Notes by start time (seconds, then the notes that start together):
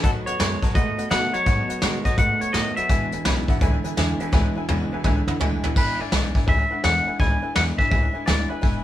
0.03 B2 D#3 F#3 A3 B3 F#4 A4 B4 D#5 F#5, kick, closed hi-hat
0.26 D#2 B3 F#4 B4 C#5 D#5 F#5, closed hi-hat
0.30 A3
0.38 F#2 B2 D#3 G#3 A3 B3 F#4 B4 D#5 G#5, snare, closed hi-hat
0.62 B2 F#3 A3 B3 F#4 B4 D#5 A5, kick, closed hi-hat
0.74 G#2 B2 D#3 A3 B3 F#4 B4 D#5 F#5, kick, closed hi-hat
0.97 A3 B3 F#4 B4 D#5 F#5, muted upright bass stroke, closed hi-hat
1.09 B2 D#3 A3 B3 F#4 B4 D#5 F#5, snare, closed hi-hat
1.32 B2 F#3 A3 B3 F#4 B4 C#5 D#5 F#5, muted upright bass stroke, closed hi-hat
1.45 G#2 B2 D#3 F#3 A3 B3 F#4 B4 D#5 F#5, kick, closed hi-hat
1.68 A3 B3 F#4 B4 D#5 F#5, muted upright bass stroke, closed hi-hat
1.80 B2 D#3 G#3 A3 B3 F#4 B4 D#5 F#5, snare, closed hi-hat
2.04 B2 F#3 A3 B3 F#4 B4 D#5 F#5, muted upright bass stroke, kick, closed hi-hat
2.17 G#2 B2 D#3 A3 B3 B4 D#5 F#5, kick, closed hi-hat
2.40 A3 B3 F#4 B4 C#5 D#5 F#5, muted upright bass stroke, closed hi-hat
2.53 A2 B2 D#3 A3 B3 F#4 B4 D#5 F#5, snare, closed hi-hat
2.76 B2 F#3 A3 B3 F#4 B4 D#5 E5 F#5, muted upright bass stroke, closed hi-hat
2.89 E1 E2 B2 E3 G#3 D4 E4 B4 E5 G#5, kick, closed hi-hat
3.11 G#1 E3 G#3 D4 E4 B4 E5 G#5, closed hi-hat
3.25 B1 E2 B2 C#3 E3 G#3 D4 E4 B4 E5 B5, snare, closed hi-hat
3.47 E2 B2 E3 G#3 D4 E4 B4 E5 F#5, muted upright bass stroke, kick, closed hi-hat
3.60 C#2 E2 D3 E3 G#3 D4 E4 B4 E5 G#5, kick, closed hi-hat
3.83 E3 G#3 D4 E4 B4 E5 G#5, muted upright bass stroke, closed hi-hat
3.96 E2 B2 D3 E3 G#3 D4 E4 B4 E5 G#5, snare, closed hi-hat
4.19 E2 B2 E3 G#3 D4 E4 B4 E5 G#5, muted upright bass stroke, closed hi-hat
4.32 C#2 E2 B2 E3 G#3 D4 E4 B4 E5 G#5, kick, snare
4.55 E3 G#3 D4 E4 B4 E5 G#5, muted upright bass stroke
4.69 E2 B2 C#3 E3 G#3 D4 E4 B4 E5 G#5, high tom
4.91 E2 B2 E3 G#3 D4 E4 B4 E5 G#5, muted upright bass stroke
5.04 C#2 E2 D3 E3 G#3 D4 E4 B4 E5 G#5, kick, mid tom
5.27 E3 G#3 D4 E4 B4 E5 F#5, mid tom
5.39 D2 E2 B2 D3 E3 G#3 D4 E4 B4 E5 G#5, floor tom
5.63 E2 B2 E3 G#3 D4 E4 B4 E5 G#5, floor tom
5.76 E1 E2 B2 E3 G#3 D4 E4 B4 E5 G#5, kick, crash
5.99 G#1 E3 G#3 D4 E4 B4 D5 E5 G#5
6.12 B1 E2 B2 E3 G#3 D4 E4 B4 E5 G#5, snare, open hi-hat
6.35 E3 G#3 D4 E4 B4 E5 G#5, muted upright bass stroke, kick
6.47 C#2 E3 G#3 D4 E4 B4 E5 G#5, kick, open hi-hat
6.70 E3 G#3 D4 E4 B4 E5 F#5, muted upright bass stroke
6.84 E2 B2 E3 G#3 D4 E4 B4 E5 F#5 G#5, snare, open hi-hat
7.07 E3 G#3 D4 E4 B4 E5 G#5, muted upright bass stroke
7.19 C#2 E2 B2 E3 G#3 D4 E4 B4 E5 G#5 B5, kick, open hi-hat
7.42 E3 G#3 D4 E4 B4 E5 G#5, muted upright bass stroke
7.55 E2 B2 E3 G#3 D4 E4 B4 E5 F#5, snare, open hi-hat
7.78 E3 G#3 D4 E4 B4 E5 G#5, kick
7.90 C#2 E3 G#3 D4 E4 B4 E5 G#5, kick, open hi-hat
8.12 E3 G#3 D4 E4 B4 E5 G#5, muted upright bass stroke
8.26 D2 E2 B2 E3 G#3 D4 E4 B4 D5 E5 G#5, snare
8.49 E3 G#3 D4 E4 B4 E5 G#5, muted upright bass stroke
8.61 E1 E2 B2 E3 G#3 D4 E4 B4 E5 G#5, kick, open hi-hat